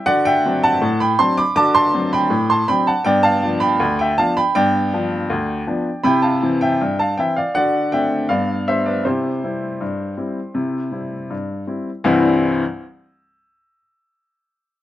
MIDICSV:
0, 0, Header, 1, 2, 480
1, 0, Start_track
1, 0, Key_signature, 0, "major"
1, 0, Tempo, 748130
1, 40, Time_signature, 2, 2, 24, 8
1, 4840, Tempo, 753769
1, 9479, End_track
2, 0, Start_track
2, 0, Title_t, "Upright piano"
2, 0, Program_c, 0, 0
2, 38, Note_on_c, 0, 78, 119
2, 40, Note_on_c, 0, 50, 102
2, 43, Note_on_c, 0, 74, 94
2, 54, Note_on_c, 0, 66, 63
2, 153, Note_off_c, 0, 74, 0
2, 159, Note_off_c, 0, 78, 0
2, 160, Control_c, 0, 64, 127
2, 163, Note_on_c, 0, 79, 119
2, 171, Note_on_c, 0, 76, 82
2, 182, Note_off_c, 0, 66, 0
2, 243, Note_off_c, 0, 50, 0
2, 292, Note_on_c, 0, 54, 63
2, 296, Note_on_c, 0, 60, 64
2, 296, Note_on_c, 0, 62, 64
2, 389, Note_off_c, 0, 76, 0
2, 401, Note_off_c, 0, 79, 0
2, 408, Note_on_c, 0, 81, 126
2, 414, Note_on_c, 0, 78, 91
2, 420, Note_off_c, 0, 54, 0
2, 423, Note_off_c, 0, 60, 0
2, 423, Note_off_c, 0, 62, 0
2, 524, Note_on_c, 0, 45, 94
2, 525, Control_c, 0, 64, 0
2, 630, Note_off_c, 0, 78, 0
2, 643, Note_off_c, 0, 81, 0
2, 644, Note_on_c, 0, 83, 111
2, 651, Note_on_c, 0, 79, 85
2, 726, Note_off_c, 0, 45, 0
2, 757, Note_off_c, 0, 79, 0
2, 762, Note_off_c, 0, 83, 0
2, 763, Note_on_c, 0, 84, 123
2, 765, Note_on_c, 0, 54, 59
2, 765, Note_on_c, 0, 60, 66
2, 770, Note_on_c, 0, 62, 72
2, 771, Note_on_c, 0, 81, 81
2, 877, Note_off_c, 0, 81, 0
2, 881, Note_off_c, 0, 84, 0
2, 882, Note_on_c, 0, 86, 115
2, 888, Note_on_c, 0, 83, 90
2, 895, Note_off_c, 0, 54, 0
2, 895, Note_off_c, 0, 60, 0
2, 899, Note_off_c, 0, 62, 0
2, 991, Note_off_c, 0, 86, 0
2, 996, Note_off_c, 0, 83, 0
2, 999, Note_on_c, 0, 50, 104
2, 1000, Note_on_c, 0, 86, 126
2, 1008, Note_on_c, 0, 81, 103
2, 1015, Note_on_c, 0, 66, 66
2, 1109, Control_c, 0, 64, 127
2, 1114, Note_off_c, 0, 81, 0
2, 1120, Note_off_c, 0, 86, 0
2, 1120, Note_on_c, 0, 84, 127
2, 1124, Note_on_c, 0, 81, 96
2, 1143, Note_off_c, 0, 66, 0
2, 1203, Note_off_c, 0, 50, 0
2, 1242, Note_on_c, 0, 54, 59
2, 1245, Note_on_c, 0, 60, 62
2, 1249, Note_on_c, 0, 62, 68
2, 1345, Note_off_c, 0, 81, 0
2, 1360, Note_off_c, 0, 84, 0
2, 1365, Note_on_c, 0, 83, 116
2, 1373, Note_off_c, 0, 54, 0
2, 1374, Note_on_c, 0, 79, 89
2, 1375, Note_off_c, 0, 60, 0
2, 1378, Note_off_c, 0, 62, 0
2, 1476, Note_on_c, 0, 45, 91
2, 1486, Control_c, 0, 64, 0
2, 1590, Note_off_c, 0, 79, 0
2, 1602, Note_off_c, 0, 83, 0
2, 1603, Note_on_c, 0, 84, 107
2, 1612, Note_on_c, 0, 81, 81
2, 1681, Note_off_c, 0, 45, 0
2, 1717, Note_off_c, 0, 81, 0
2, 1720, Note_off_c, 0, 84, 0
2, 1720, Note_on_c, 0, 83, 119
2, 1725, Note_on_c, 0, 54, 53
2, 1725, Note_on_c, 0, 60, 61
2, 1728, Note_on_c, 0, 62, 63
2, 1729, Note_on_c, 0, 79, 83
2, 1835, Note_off_c, 0, 79, 0
2, 1839, Note_off_c, 0, 83, 0
2, 1843, Note_on_c, 0, 81, 102
2, 1847, Note_on_c, 0, 78, 76
2, 1855, Note_off_c, 0, 54, 0
2, 1855, Note_off_c, 0, 60, 0
2, 1857, Note_off_c, 0, 62, 0
2, 1954, Note_on_c, 0, 79, 112
2, 1955, Note_off_c, 0, 78, 0
2, 1959, Note_on_c, 0, 43, 101
2, 1960, Note_off_c, 0, 81, 0
2, 1964, Note_on_c, 0, 74, 95
2, 1967, Note_on_c, 0, 59, 75
2, 2072, Note_on_c, 0, 81, 124
2, 2073, Note_off_c, 0, 74, 0
2, 2076, Note_off_c, 0, 79, 0
2, 2080, Control_c, 0, 64, 127
2, 2082, Note_on_c, 0, 77, 95
2, 2097, Note_off_c, 0, 59, 0
2, 2162, Note_off_c, 0, 43, 0
2, 2202, Note_on_c, 0, 59, 58
2, 2203, Note_on_c, 0, 53, 61
2, 2206, Note_on_c, 0, 62, 72
2, 2303, Note_off_c, 0, 77, 0
2, 2311, Note_on_c, 0, 83, 114
2, 2315, Note_off_c, 0, 81, 0
2, 2319, Note_on_c, 0, 79, 90
2, 2333, Note_off_c, 0, 53, 0
2, 2333, Note_off_c, 0, 59, 0
2, 2336, Note_off_c, 0, 62, 0
2, 2436, Note_on_c, 0, 38, 105
2, 2445, Control_c, 0, 64, 0
2, 2542, Note_off_c, 0, 79, 0
2, 2555, Note_off_c, 0, 83, 0
2, 2561, Note_on_c, 0, 79, 101
2, 2573, Note_on_c, 0, 76, 81
2, 2641, Note_off_c, 0, 38, 0
2, 2678, Note_off_c, 0, 76, 0
2, 2680, Note_off_c, 0, 79, 0
2, 2681, Note_on_c, 0, 81, 110
2, 2685, Note_on_c, 0, 53, 62
2, 2689, Note_on_c, 0, 59, 53
2, 2690, Note_on_c, 0, 62, 67
2, 2691, Note_on_c, 0, 77, 79
2, 2797, Note_off_c, 0, 77, 0
2, 2800, Note_off_c, 0, 81, 0
2, 2802, Note_on_c, 0, 83, 118
2, 2809, Note_on_c, 0, 79, 79
2, 2815, Note_off_c, 0, 53, 0
2, 2818, Note_off_c, 0, 59, 0
2, 2819, Note_off_c, 0, 62, 0
2, 2910, Note_off_c, 0, 79, 0
2, 2920, Note_off_c, 0, 83, 0
2, 2920, Note_on_c, 0, 79, 118
2, 2922, Note_on_c, 0, 43, 107
2, 2924, Note_on_c, 0, 74, 84
2, 2933, Note_on_c, 0, 59, 66
2, 3037, Control_c, 0, 64, 127
2, 3061, Note_off_c, 0, 59, 0
2, 3125, Note_off_c, 0, 43, 0
2, 3168, Note_on_c, 0, 53, 66
2, 3168, Note_on_c, 0, 59, 54
2, 3171, Note_on_c, 0, 62, 70
2, 3297, Note_off_c, 0, 53, 0
2, 3297, Note_off_c, 0, 59, 0
2, 3299, Note_off_c, 0, 62, 0
2, 3399, Note_on_c, 0, 38, 91
2, 3408, Control_c, 0, 64, 0
2, 3603, Note_off_c, 0, 38, 0
2, 3639, Note_on_c, 0, 53, 57
2, 3643, Note_on_c, 0, 59, 54
2, 3644, Note_on_c, 0, 62, 63
2, 3771, Note_off_c, 0, 53, 0
2, 3774, Note_off_c, 0, 59, 0
2, 3774, Note_off_c, 0, 62, 0
2, 3856, Note_off_c, 0, 74, 0
2, 3871, Note_off_c, 0, 79, 0
2, 3872, Note_on_c, 0, 83, 110
2, 3875, Note_on_c, 0, 48, 105
2, 3881, Note_on_c, 0, 79, 102
2, 3888, Note_on_c, 0, 64, 68
2, 3991, Note_off_c, 0, 79, 0
2, 3992, Note_on_c, 0, 81, 88
2, 3995, Note_off_c, 0, 83, 0
2, 4000, Note_on_c, 0, 77, 66
2, 4014, Control_c, 0, 64, 127
2, 4017, Note_off_c, 0, 64, 0
2, 4080, Note_off_c, 0, 48, 0
2, 4122, Note_on_c, 0, 52, 60
2, 4123, Note_on_c, 0, 64, 59
2, 4126, Note_on_c, 0, 60, 57
2, 4221, Note_off_c, 0, 77, 0
2, 4234, Note_off_c, 0, 81, 0
2, 4241, Note_on_c, 0, 79, 104
2, 4249, Note_on_c, 0, 76, 81
2, 4253, Note_off_c, 0, 52, 0
2, 4253, Note_off_c, 0, 64, 0
2, 4256, Note_off_c, 0, 60, 0
2, 4363, Control_c, 0, 64, 0
2, 4370, Note_on_c, 0, 43, 82
2, 4467, Note_off_c, 0, 76, 0
2, 4479, Note_off_c, 0, 79, 0
2, 4487, Note_on_c, 0, 81, 93
2, 4499, Note_on_c, 0, 77, 73
2, 4569, Note_off_c, 0, 43, 0
2, 4601, Note_off_c, 0, 77, 0
2, 4602, Note_off_c, 0, 81, 0
2, 4604, Note_on_c, 0, 79, 87
2, 4610, Note_on_c, 0, 52, 53
2, 4613, Note_on_c, 0, 60, 46
2, 4614, Note_on_c, 0, 64, 56
2, 4617, Note_on_c, 0, 76, 70
2, 4720, Note_off_c, 0, 76, 0
2, 4721, Note_off_c, 0, 79, 0
2, 4725, Note_on_c, 0, 77, 83
2, 4735, Note_on_c, 0, 74, 71
2, 4739, Note_off_c, 0, 52, 0
2, 4741, Note_off_c, 0, 60, 0
2, 4742, Note_off_c, 0, 64, 0
2, 4839, Note_off_c, 0, 74, 0
2, 4842, Note_off_c, 0, 77, 0
2, 4843, Note_on_c, 0, 78, 105
2, 4848, Note_on_c, 0, 50, 87
2, 4853, Note_on_c, 0, 74, 82
2, 4860, Note_on_c, 0, 66, 59
2, 4943, Control_c, 0, 64, 127
2, 4986, Note_off_c, 0, 66, 0
2, 5048, Note_off_c, 0, 50, 0
2, 5070, Note_off_c, 0, 74, 0
2, 5080, Note_off_c, 0, 78, 0
2, 5081, Note_on_c, 0, 79, 94
2, 5083, Note_on_c, 0, 57, 53
2, 5088, Note_on_c, 0, 76, 70
2, 5089, Note_on_c, 0, 62, 55
2, 5090, Note_on_c, 0, 60, 47
2, 5214, Note_off_c, 0, 57, 0
2, 5218, Note_off_c, 0, 62, 0
2, 5219, Note_off_c, 0, 60, 0
2, 5307, Note_off_c, 0, 76, 0
2, 5314, Note_on_c, 0, 77, 91
2, 5318, Note_on_c, 0, 43, 89
2, 5320, Note_off_c, 0, 79, 0
2, 5325, Note_on_c, 0, 74, 67
2, 5327, Control_c, 0, 64, 0
2, 5332, Note_on_c, 0, 59, 55
2, 5430, Control_c, 0, 64, 127
2, 5461, Note_off_c, 0, 59, 0
2, 5524, Note_off_c, 0, 43, 0
2, 5546, Note_off_c, 0, 74, 0
2, 5558, Note_off_c, 0, 77, 0
2, 5562, Note_on_c, 0, 76, 88
2, 5565, Note_on_c, 0, 55, 45
2, 5567, Note_on_c, 0, 59, 51
2, 5570, Note_on_c, 0, 72, 67
2, 5571, Note_on_c, 0, 62, 49
2, 5677, Note_off_c, 0, 72, 0
2, 5678, Note_on_c, 0, 74, 74
2, 5682, Note_off_c, 0, 76, 0
2, 5687, Note_on_c, 0, 71, 62
2, 5696, Note_off_c, 0, 55, 0
2, 5698, Note_off_c, 0, 59, 0
2, 5701, Note_off_c, 0, 62, 0
2, 5796, Note_off_c, 0, 71, 0
2, 5799, Note_on_c, 0, 72, 76
2, 5800, Note_off_c, 0, 74, 0
2, 5802, Note_on_c, 0, 48, 75
2, 5807, Note_on_c, 0, 67, 64
2, 5808, Control_c, 0, 64, 0
2, 5819, Note_on_c, 0, 64, 52
2, 5940, Control_c, 0, 64, 127
2, 5947, Note_off_c, 0, 64, 0
2, 6007, Note_off_c, 0, 48, 0
2, 6042, Note_on_c, 0, 55, 41
2, 6049, Note_on_c, 0, 60, 45
2, 6051, Note_on_c, 0, 64, 51
2, 6175, Note_off_c, 0, 55, 0
2, 6179, Note_off_c, 0, 60, 0
2, 6181, Note_off_c, 0, 64, 0
2, 6281, Note_on_c, 0, 43, 73
2, 6291, Control_c, 0, 64, 0
2, 6486, Note_off_c, 0, 43, 0
2, 6514, Note_on_c, 0, 55, 48
2, 6516, Note_on_c, 0, 60, 42
2, 6517, Note_on_c, 0, 64, 45
2, 6649, Note_off_c, 0, 55, 0
2, 6650, Note_off_c, 0, 60, 0
2, 6651, Note_off_c, 0, 64, 0
2, 6752, Note_on_c, 0, 48, 72
2, 6763, Note_on_c, 0, 64, 49
2, 6884, Control_c, 0, 64, 127
2, 6895, Note_off_c, 0, 64, 0
2, 6961, Note_off_c, 0, 48, 0
2, 6988, Note_on_c, 0, 55, 38
2, 6989, Note_on_c, 0, 60, 39
2, 6994, Note_on_c, 0, 64, 45
2, 7125, Note_off_c, 0, 55, 0
2, 7125, Note_off_c, 0, 60, 0
2, 7129, Note_off_c, 0, 64, 0
2, 7222, Note_off_c, 0, 67, 0
2, 7234, Note_on_c, 0, 43, 68
2, 7244, Note_off_c, 0, 72, 0
2, 7253, Control_c, 0, 64, 0
2, 7442, Note_off_c, 0, 43, 0
2, 7470, Note_on_c, 0, 60, 41
2, 7471, Note_on_c, 0, 55, 37
2, 7474, Note_on_c, 0, 64, 43
2, 7606, Note_off_c, 0, 55, 0
2, 7606, Note_off_c, 0, 60, 0
2, 7609, Note_off_c, 0, 64, 0
2, 7704, Note_on_c, 0, 52, 100
2, 7705, Note_on_c, 0, 36, 105
2, 7706, Note_on_c, 0, 43, 84
2, 7709, Note_on_c, 0, 64, 96
2, 7710, Note_on_c, 0, 55, 87
2, 7712, Note_on_c, 0, 60, 92
2, 7857, Control_c, 0, 64, 127
2, 7981, Note_off_c, 0, 36, 0
2, 7981, Note_off_c, 0, 52, 0
2, 7982, Note_off_c, 0, 43, 0
2, 7983, Note_off_c, 0, 64, 0
2, 7984, Note_off_c, 0, 55, 0
2, 7985, Note_off_c, 0, 60, 0
2, 8071, Control_c, 0, 64, 0
2, 9479, End_track
0, 0, End_of_file